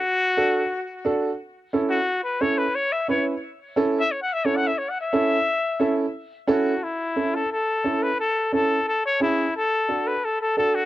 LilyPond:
<<
  \new Staff \with { instrumentName = "Trumpet" } { \time 4/4 \key a \major \tempo 4 = 177 fis'2~ fis'8 r4. | r4. fis'4 b'8 cis''8 b'8 | cis''8 e''8 cis''8 r4. \tuplet 3/2 { r4 e''8 } | \tuplet 3/2 { cis''8 fis''8 e''8 cis''8 fis''8 e''8 cis''8 fis''8 e''8~ } e''4~ |
e''4. r4. fis'4 | e'4. a'8 a'4. b'8 | a'4 a'4 a'8 cis''8 e'4 | a'4. b'8 a'8 a'8 a'8 fis'8 | }
  \new Staff \with { instrumentName = "Upright piano" } { \time 4/4 \key a \major << { r1 | r1 | r1 | r1 |
r2. a''4 | r1 | r1 | r1 | } \\ { r4 <d' fis' a'>8 r4. <d' fis' a'>8 r8 | r4 <cis' e' a'>8 r4. <cis' e' a'>8 r8 | r4 <cis' e' b'>8 r4. <cis' e' a'>8 r8 | r4 <cis' e' a'>8 r4. <cis' e' a'>8 r8 |
r4 <cis' e' a'>8 r4. <cis' e' a'>8 r8 | r4 <cis' e' a'>8 r4. <cis' e' a'>8 r8 | r4 <cis' e' a'>8 r4. <cis' e' gis'>8 r8 | r4 <d' fis' a'>8 r4. <d' fis' a'>8 r8 | } >> }
>>